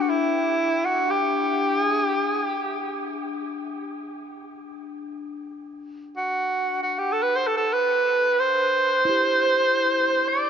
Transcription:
0, 0, Header, 1, 3, 480
1, 0, Start_track
1, 0, Tempo, 500000
1, 10077, End_track
2, 0, Start_track
2, 0, Title_t, "Tenor saxophone"
2, 0, Program_c, 0, 66
2, 6, Note_on_c, 0, 66, 50
2, 92, Note_on_c, 0, 64, 74
2, 106, Note_off_c, 0, 66, 0
2, 819, Note_on_c, 0, 66, 71
2, 834, Note_off_c, 0, 64, 0
2, 1059, Note_on_c, 0, 67, 73
2, 1073, Note_off_c, 0, 66, 0
2, 1769, Note_off_c, 0, 67, 0
2, 1769, Note_on_c, 0, 68, 73
2, 1961, Note_off_c, 0, 68, 0
2, 1961, Note_on_c, 0, 67, 73
2, 2163, Note_off_c, 0, 67, 0
2, 2163, Note_on_c, 0, 68, 73
2, 2355, Note_off_c, 0, 68, 0
2, 2355, Note_on_c, 0, 67, 73
2, 3055, Note_off_c, 0, 67, 0
2, 5922, Note_on_c, 0, 66, 69
2, 6516, Note_off_c, 0, 66, 0
2, 6556, Note_on_c, 0, 66, 66
2, 6705, Note_on_c, 0, 67, 62
2, 6720, Note_off_c, 0, 66, 0
2, 6838, Note_on_c, 0, 69, 69
2, 6852, Note_off_c, 0, 67, 0
2, 6935, Note_on_c, 0, 71, 67
2, 6950, Note_off_c, 0, 69, 0
2, 7062, Note_on_c, 0, 72, 68
2, 7077, Note_off_c, 0, 71, 0
2, 7169, Note_on_c, 0, 69, 67
2, 7184, Note_off_c, 0, 72, 0
2, 7259, Note_off_c, 0, 69, 0
2, 7265, Note_on_c, 0, 69, 65
2, 7423, Note_on_c, 0, 71, 75
2, 7438, Note_off_c, 0, 69, 0
2, 8064, Note_on_c, 0, 72, 84
2, 8078, Note_off_c, 0, 71, 0
2, 9871, Note_on_c, 0, 74, 75
2, 9886, Note_off_c, 0, 72, 0
2, 10077, Note_off_c, 0, 74, 0
2, 10077, End_track
3, 0, Start_track
3, 0, Title_t, "Singing bowl"
3, 0, Program_c, 1, 14
3, 0, Note_on_c, 1, 62, 60
3, 6668, Note_off_c, 1, 62, 0
3, 8690, Note_on_c, 1, 64, 54
3, 8731, Note_on_c, 1, 67, 41
3, 10077, Note_off_c, 1, 64, 0
3, 10077, Note_off_c, 1, 67, 0
3, 10077, End_track
0, 0, End_of_file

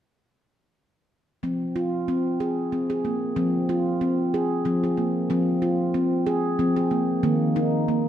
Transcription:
0, 0, Header, 1, 2, 480
1, 0, Start_track
1, 0, Key_signature, -4, "minor"
1, 0, Tempo, 645161
1, 1068, Time_signature, 3, 2, 24, 8
1, 6016, End_track
2, 0, Start_track
2, 0, Title_t, "Handpan"
2, 0, Program_c, 0, 114
2, 1065, Note_on_c, 0, 53, 54
2, 1067, Note_on_c, 0, 60, 55
2, 1307, Note_off_c, 0, 60, 0
2, 1307, Note_on_c, 0, 65, 56
2, 1547, Note_off_c, 0, 65, 0
2, 1550, Note_on_c, 0, 60, 61
2, 1788, Note_off_c, 0, 60, 0
2, 1788, Note_on_c, 0, 68, 56
2, 2026, Note_on_c, 0, 60, 57
2, 2027, Note_off_c, 0, 68, 0
2, 2156, Note_on_c, 0, 68, 49
2, 2159, Note_off_c, 0, 60, 0
2, 2265, Note_off_c, 0, 68, 0
2, 2267, Note_on_c, 0, 58, 53
2, 2476, Note_off_c, 0, 53, 0
2, 2501, Note_on_c, 0, 60, 60
2, 2503, Note_on_c, 0, 53, 74
2, 2506, Note_off_c, 0, 58, 0
2, 2744, Note_off_c, 0, 60, 0
2, 2747, Note_on_c, 0, 65, 58
2, 2985, Note_on_c, 0, 60, 59
2, 2986, Note_off_c, 0, 65, 0
2, 3225, Note_off_c, 0, 60, 0
2, 3229, Note_on_c, 0, 68, 56
2, 3434, Note_off_c, 0, 53, 0
2, 3461, Note_on_c, 0, 60, 58
2, 3464, Note_on_c, 0, 53, 66
2, 3467, Note_off_c, 0, 68, 0
2, 3596, Note_off_c, 0, 60, 0
2, 3598, Note_on_c, 0, 68, 51
2, 3701, Note_on_c, 0, 58, 53
2, 3705, Note_off_c, 0, 68, 0
2, 3915, Note_off_c, 0, 53, 0
2, 3942, Note_on_c, 0, 60, 61
2, 3943, Note_off_c, 0, 58, 0
2, 3948, Note_on_c, 0, 53, 80
2, 4182, Note_on_c, 0, 65, 60
2, 4184, Note_off_c, 0, 60, 0
2, 4422, Note_on_c, 0, 60, 64
2, 4424, Note_off_c, 0, 65, 0
2, 4661, Note_on_c, 0, 68, 65
2, 4664, Note_off_c, 0, 60, 0
2, 4878, Note_off_c, 0, 53, 0
2, 4902, Note_on_c, 0, 53, 65
2, 4903, Note_off_c, 0, 68, 0
2, 4905, Note_on_c, 0, 60, 66
2, 5032, Note_on_c, 0, 68, 58
2, 5038, Note_off_c, 0, 60, 0
2, 5141, Note_on_c, 0, 58, 58
2, 5143, Note_off_c, 0, 68, 0
2, 5355, Note_off_c, 0, 53, 0
2, 5372, Note_off_c, 0, 58, 0
2, 5381, Note_on_c, 0, 51, 84
2, 5381, Note_on_c, 0, 58, 68
2, 5624, Note_off_c, 0, 58, 0
2, 5625, Note_on_c, 0, 63, 66
2, 5866, Note_off_c, 0, 63, 0
2, 5866, Note_on_c, 0, 58, 62
2, 6016, Note_off_c, 0, 51, 0
2, 6016, Note_off_c, 0, 58, 0
2, 6016, End_track
0, 0, End_of_file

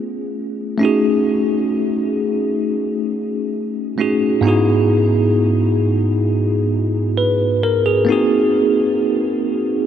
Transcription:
0, 0, Header, 1, 2, 480
1, 0, Start_track
1, 0, Tempo, 909091
1, 430, Time_signature, 4, 2, 24, 8
1, 5210, End_track
2, 0, Start_track
2, 0, Title_t, "Tine electric piano"
2, 0, Program_c, 0, 4
2, 0, Control_c, 0, 64, 127
2, 0, Note_on_c, 0, 57, 68
2, 0, Note_on_c, 0, 59, 64
2, 0, Note_on_c, 0, 61, 65
2, 0, Note_on_c, 0, 65, 64
2, 0, Note_on_c, 0, 68, 79
2, 399, Note_off_c, 0, 57, 0
2, 404, Note_off_c, 0, 59, 0
2, 409, Note_off_c, 0, 61, 0
2, 410, Note_on_c, 0, 57, 74
2, 414, Note_off_c, 0, 65, 0
2, 418, Note_off_c, 0, 68, 0
2, 419, Note_on_c, 0, 61, 64
2, 429, Note_on_c, 0, 63, 64
2, 438, Control_c, 0, 64, 0
2, 439, Note_on_c, 0, 66, 64
2, 449, Note_on_c, 0, 68, 76
2, 522, Control_c, 0, 64, 127
2, 2079, Note_off_c, 0, 57, 0
2, 2084, Note_off_c, 0, 61, 0
2, 2089, Note_off_c, 0, 63, 0
2, 2093, Note_off_c, 0, 66, 0
2, 2098, Note_off_c, 0, 68, 0
2, 2100, Note_on_c, 0, 57, 59
2, 2105, Note_on_c, 0, 61, 54
2, 2110, Note_on_c, 0, 63, 54
2, 2115, Note_on_c, 0, 66, 54
2, 2119, Note_on_c, 0, 68, 66
2, 2329, Note_on_c, 0, 44, 73
2, 2337, Note_on_c, 0, 59, 68
2, 2338, Note_off_c, 0, 63, 0
2, 2344, Note_on_c, 0, 63, 67
2, 2345, Note_off_c, 0, 57, 0
2, 2347, Note_off_c, 0, 61, 0
2, 2352, Note_off_c, 0, 66, 0
2, 2353, Note_on_c, 0, 64, 67
2, 2355, Note_off_c, 0, 68, 0
2, 2358, Control_c, 0, 64, 0
2, 2360, Note_on_c, 0, 66, 67
2, 2368, Note_on_c, 0, 68, 80
2, 2448, Control_c, 0, 64, 127
2, 3778, Note_off_c, 0, 68, 0
2, 3788, Note_on_c, 0, 71, 67
2, 4017, Note_off_c, 0, 71, 0
2, 4031, Note_on_c, 0, 70, 75
2, 4145, Note_off_c, 0, 70, 0
2, 4149, Note_on_c, 0, 68, 68
2, 4239, Note_off_c, 0, 44, 0
2, 4242, Note_off_c, 0, 59, 0
2, 4246, Note_off_c, 0, 63, 0
2, 4249, Note_on_c, 0, 58, 67
2, 4250, Note_off_c, 0, 64, 0
2, 4254, Note_off_c, 0, 66, 0
2, 4259, Note_on_c, 0, 60, 64
2, 4270, Note_on_c, 0, 63, 67
2, 4278, Control_c, 0, 64, 0
2, 4279, Note_on_c, 0, 66, 69
2, 4282, Note_off_c, 0, 68, 0
2, 4288, Note_on_c, 0, 68, 78
2, 4354, Control_c, 0, 64, 127
2, 5210, Note_off_c, 0, 58, 0
2, 5210, Note_off_c, 0, 60, 0
2, 5210, Note_off_c, 0, 63, 0
2, 5210, Note_off_c, 0, 66, 0
2, 5210, Note_off_c, 0, 68, 0
2, 5210, End_track
0, 0, End_of_file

